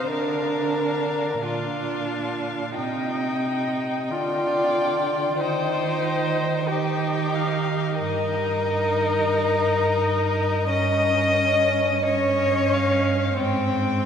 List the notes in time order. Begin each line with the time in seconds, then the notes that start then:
0.10 D3 D4 A#4 F5
1.43 A#2 D4 F4 F5
2.77 C3 D#4 G5
4.09 D3 F4 D5 G5
5.40 D#3 D#4 C5 G5
6.68 D#4 G4 G5
7.34 F5
7.98 G2 D#4 A#4 D#5
10.70 G2 C#4 D#5
12.06 C#4 C#5 D#5
12.73 F5
13.39 G#2 C4 G5